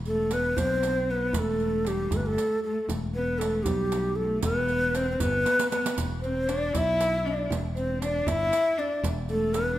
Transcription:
Already playing: E1
0.05 A3 A4, riq
0.31 B3 B4, riq, tombak tek
0.57 B1 C4 C5, riq, tombak dum
0.83 riq, tombak tek
1.09 B3 B4, tombak ka
1.33 E1 A3, riq, tombak dum
1.39 A4
1.60 riq
1.85 G3 G4, riq, tombak tek
2.11 G1 A3 A4, riq, tombak dum
2.17 B4
2.26 A3 A4
2.38 riq
2.63 A3 A4, tombak ka
2.89 E1, riq, tombak dum
3.14 B3 B4
3.38 A3 A4, riq, tombak tek
3.63 B1 G3 G4, riq, tombak dum
3.92 riq, tombak tek
4.16 A3 A4, tombak ka
4.43 E1 B3 B4, riq, tombak dum
4.68 riq
4.95 C4 C5, riq, tombak tek
5.12 C4 C5
5.20 G1 B3 B4, riq, tombak dum
5.46 riq, tombak tek
5.59 riq
5.71 B3 B4, riq, tombak ka
5.86 riq
5.98 E1, riq, tombak dum
6.22 C4 C5, riq
6.48 D4 D5, riq, tombak tek
6.73 B1 E4, riq, tombak dum
6.77 E5
7.00 riq, tombak tek
7.25 D4 D5
7.50 E1, riq, tombak dum
7.75 C4 C5, riq
8.01 D4 D5, riq, tombak tek
8.27 G1 E4 E5, riq, tombak dum
8.52 riq, tombak tek
8.77 D4 D5, tombak ka
9.03 E1, riq, tombak dum
9.29 A3 A4, riq
9.54 B3 B4, riq, tombak tek
9.74 D4

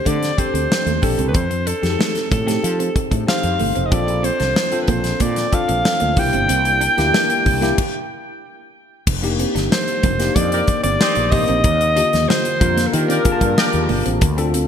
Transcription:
Already playing: C4 D4 G4 A4 C5
0.05 D3 A3 D5, kick, closed hi-hat
0.23 snare, closed hi-hat
0.38 C4 D4 G4 A4 C5, muted clean electric guitar stroke, kick, closed hi-hat, high conga
0.54 D2 C4, closed hi-hat
0.72 snare
0.86 D#2 A3, closed hi-hat, muted conga
1.02 A#1 C4 D4 G4 A4, muted clean electric guitar stroke, kick, open hi-hat, high conga, low conga
1.18 C2 C4, closed hi-hat, low conga
1.28 B4
1.34 F2 C4 C5, kick, closed hi-hat
1.50 muted clean electric guitar stroke, closed hi-hat, muted conga
1.67 D4 A4, closed hi-hat
1.82 F2 C4 D#4 G4 G#4, snare, closed hi-hat, high conga
1.90 A4
1.99 A3, snare, muted conga
2.14 muted clean electric guitar stroke, snare, closed hi-hat, muted conga
2.31 A2 A4, kick, closed hi-hat, high conga, low conga
2.47 A3 C4 D#4 G4 A4, snare, closed hi-hat
2.63 F3, closed hi-hat, muted conga
2.79 C4, closed hi-hat
2.96 muted clean electric guitar stroke, kick, closed hi-hat, high conga
3.11 A2 D4, kick, closed hi-hat
3.27 C4 D#4 G4 C5 F5, muted clean electric guitar stroke, snare
3.43 F2, closed hi-hat, muted conga
3.59 G1 A3, open hi-hat, high conga, low conga
3.75 F1 C4, closed hi-hat, low conga
3.86 D#5
3.91 A#1 C4 D4 F4 A4 D5, kick, closed hi-hat, muted conga
4.07 muted clean electric guitar stroke, closed hi-hat, muted conga
4.23 C4 C5, closed hi-hat
4.40 C2 D4, snare, closed hi-hat, high conga
4.56 snare
4.72 C4 D4 F4 A4, closed hi-hat, muted conga
4.82 B4
4.88 A#1 A#3 C5, kick, closed hi-hat, high conga, low conga
5.04 snare, closed hi-hat
5.20 A#2 A#3 D5, kick, closed hi-hat
5.36 snare, closed hi-hat, muted conga
5.52 C4 D4 F4 A4 F5, muted clean electric guitar stroke, kick, closed hi-hat, high conga
5.68 A#1 C4, closed hi-hat
5.85 snare
6.00 D2 A#3, closed hi-hat, muted conga
6.16 C2 A#3 D4 E4 G4 G5, muted clean electric guitar stroke, kick, open hi-hat, high conga, low conga
6.33 G1 C4, closed hi-hat, low conga
6.48 C2 C4, closed hi-hat, muted conga
6.65 muted clean electric guitar stroke, closed hi-hat, muted conga
6.81 D4, closed hi-hat
6.97 D2 A#3 D4 E4 G4, snare, closed hi-hat, high conga
7.13 A#3, snare
7.29 muted clean electric guitar stroke, closed hi-hat, muted conga
7.46 C2, kick, open hi-hat, high conga, low conga
7.61 A#3 D4 E4 G4, snare, closed hi-hat
7.78 kick, crash
9.07 F1, kick, crash, muted conga
9.22 A#3 D4 D#4 G4, muted clean electric guitar stroke, closed hi-hat, muted conga
9.39 C4, closed hi-hat
9.55 G1 D4, snare, closed hi-hat, high conga
9.72 C5, snare
9.88 closed hi-hat
10.03 F1 A#3, kick, closed hi-hat, high conga, low conga
10.19 A#3 D4 D#4 G4, snare, closed hi-hat
10.35 F2 A#3 D5, kick, closed hi-hat
10.52 G4 A#4 D5, closed hi-hat, muted conga
10.68 muted clean electric guitar stroke, kick, closed hi-hat, high conga
10.83 G1 C4 D5, closed hi-hat
11.00 D#4 G4 C5, snare
11.15 A#1 A#3, closed hi-hat, muted conga
11.31 A1 A#3 C4 D#4 G4 D#5, muted clean electric guitar stroke, kick, open hi-hat, high conga, low conga
11.48 A#1 C4, closed hi-hat
11.64 D#2 D#4, kick, closed hi-hat
11.81 muted clean electric guitar stroke, closed hi-hat
11.95 D3 A#3 D4 F4 G4, closed hi-hat
12.13 D#2, snare, closed hi-hat, high conga
12.29 A#3 C5, snare, muted conga
12.44 muted clean electric guitar stroke, closed hi-hat
12.60 F2 A#3 D4 F4 A#4, kick, closed hi-hat, high conga, low conga
12.77 A#3, snare, closed hi-hat
12.87 A4
12.93 D#3 A#3 D4 F4 G4 A#4, closed hi-hat, muted conga
13.08 C4 G4 A#4 D5, closed hi-hat, muted conga
13.24 A#3 D4 F4 G#4, muted clean electric guitar stroke, kick, closed hi-hat, high conga
13.32 A5
13.41 G2 D4, kick, closed hi-hat
13.57 G4 A#4 D5, muted clean electric guitar stroke, snare
13.73 D#2, closed hi-hat
13.89 G1 A#3, open hi-hat, high conga, low conga
14.06 A1 C4, closed hi-hat
14.21 D2, kick, closed hi-hat
14.37 C4 D4 F4 A4, muted clean electric guitar stroke, closed hi-hat
14.54 C4, closed hi-hat

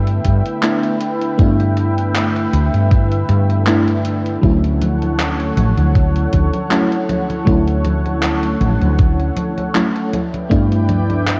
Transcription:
Already playing: G2 D3 A3 B3 D4 E4 B4 E5 G5
0.07 closed hi-hat
0.25 G2, kick, closed hi-hat
0.46 closed hi-hat
0.62 A3 B3 D4 E4, clap, closed hi-hat
0.83 closed hi-hat
1.01 closed hi-hat
1.21 closed hi-hat
1.38 G2 A3 B3 D4 E4, kick, closed hi-hat
1.60 closed hi-hat
1.77 closed hi-hat
1.98 closed hi-hat
2.15 clap, closed hi-hat
2.36 closed hi-hat
2.53 D2, closed hi-hat
2.73 G2, closed hi-hat
2.91 kick, closed hi-hat
3.12 closed hi-hat
3.29 G2, closed hi-hat
3.50 closed hi-hat
3.66 A3 B3 D4 E4, clap, closed hi-hat
3.88 closed hi-hat
4.05 closed hi-hat
4.26 closed hi-hat
4.41 D2 F#3 A3 C#4 E4 A4 C#5 F#5, kick, closed hi-hat, high conga
4.64 closed hi-hat
4.82 closed hi-hat, high conga
5.02 closed hi-hat, high conga
5.19 clap, closed hi-hat, high conga
5.40 closed hi-hat
5.57 A1, closed hi-hat, high conga
5.77 D2, closed hi-hat, high conga
5.95 kick, closed hi-hat, high conga
6.16 closed hi-hat
6.33 D2, kick, closed hi-hat, high conga
6.54 closed hi-hat, high conga
6.70 F#3 A3 C#4 E4, clap, closed hi-hat, high conga
6.92 closed hi-hat
7.09 closed hi-hat, high conga
7.30 closed hi-hat, high conga
7.45 D2 F#3 A3 C#4 E4, kick, closed hi-hat, high conga
7.68 closed hi-hat
7.85 closed hi-hat, high conga
8.06 closed hi-hat, high conga
8.23 clap, closed hi-hat, high conga
8.43 closed hi-hat
8.61 A1, closed hi-hat, high conga
8.81 D2, closed hi-hat, high conga
8.99 kick, closed hi-hat, high conga
9.20 closed hi-hat
9.37 closed hi-hat, high conga
9.58 closed hi-hat, high conga
9.74 F#3 A3 C#4 E4, clap, closed hi-hat, high conga
9.96 closed hi-hat
10.12 E4 B4 D5 G5, closed hi-hat, high conga
10.34 closed hi-hat, high conga
10.49 G2 A3 B3 D4 E4, kick, closed hi-hat, high conga
10.72 closed hi-hat
10.89 closed hi-hat, high conga
11.10 closed hi-hat, high conga
11.27 clap, closed hi-hat, high conga

